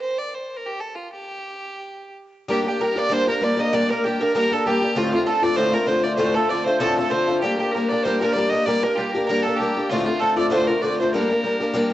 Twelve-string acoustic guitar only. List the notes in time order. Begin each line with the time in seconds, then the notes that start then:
2.48 G3 A#3 D4 G4
2.64 A#3 D4 G4
2.79 G3 A#3 D4 G4
2.96 A#3 D4 G4
3.09 G3 A#3 D4 G4
3.27 A#3 D4 G4
3.41 G3 A#3 D4 G4
3.57 A#3 D4 G4
3.73 G3 A#3 D4 G4
3.90 A#3 D4 G4
4.04 G3 A#3 D4 G4
4.20 A#3 D4 G4
4.35 G3 A#3 D4 G4
4.52 A#3 D4 G4
4.66 G3 A#3 D4 G4
4.82 A#3 D4 G4
4.95 D2 A2 D3 A3 C4 F4
5.12 D3 A3 C4 F4
5.26 D3 A3 C4 F4
5.42 D3 A3 C4 F4
5.56 D2 A2 D3 A3 C4 F4
5.72 D3 A3 C4 F4
5.86 D3 A3 C4 F4
6.03 D3 A3 C4 F4
6.17 D2 A2 D3 A3 C4 F4
6.36 D3 A3 C4 F4
6.49 D3 A3 C4 F4
6.66 D3 A3 C4 F4
6.80 D2 A2 D3 A3 C4 F4
6.97 D3 A3 C4 F4
7.11 D3 A3 C4 F4
7.28 D3 A3 C4 F4
7.42 G3 A#3 D4 G4
7.59 A#3 D4 G4
7.75 G3 A#3 D4 G4
7.91 A#3 D4 G4
8.05 G3 A#3 D4 G4
8.21 A#3 D4 G4
8.35 G3 A#3 D4 G4
8.52 A#3 D4 G4
8.66 G3 A#3 D4 G4
8.83 A#3 D4 G4
8.97 G3 A#3 D4 G4
9.15 A#3 D4 G4
9.29 G3 A#3 D4 G4
9.46 A#3 D4 G4
9.60 G3 A#3 D4 G4
9.77 A#3 D4 G4
9.90 D2 A2 D3 A3 C4 F4
10.06 D3 A3 C4 F4
10.20 D3 A3 C4 F4
10.36 D3 A3 C4 F4
10.50 D2 A2 D3 A3 C4 F4
10.68 D3 A3 C4 F4
10.82 D3 A3 C4 F4
11.00 D3 A3 C4 F4
11.14 G3 A#3 D4 G4
11.29 A#3 D4 G4
11.44 G3 A#3 D4 G4
11.60 A#3 D4 G4
11.74 G3 A#3 D4 G4
11.90 G4